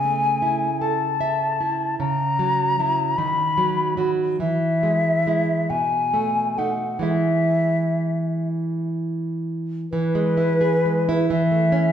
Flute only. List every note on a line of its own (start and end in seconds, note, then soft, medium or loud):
0.00 0.83 G#5 loud
0.81 1.99 A5 medium
1.99 3.19 A#5 loud
3.17 4.11 B5 medium
4.40 5.71 E5 loud
5.70 6.60 G#5 medium
6.58 7.05 F#5 medium
7.03 8.49 E5 medium
9.91 11.26 B4 loud
11.31 11.92 E5 medium